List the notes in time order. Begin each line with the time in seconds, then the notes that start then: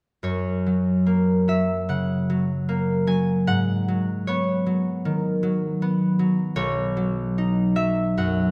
0.23 F#2 C#5
0.66 F#3
1.06 A#3
1.48 F#3 E5
1.89 C#3 F#5
2.30 F#3
2.69 A#3
3.07 F#3 G#5
3.47 G#2 F#5
3.88 F#3
4.27 B3 C#5
4.66 F#3
5.05 D#3
5.43 F#3
5.82 B3
6.19 F#3
6.56 B1 C#5
6.97 F#3
7.38 D#4
7.76 F#3 E5
8.17 F#2 F#5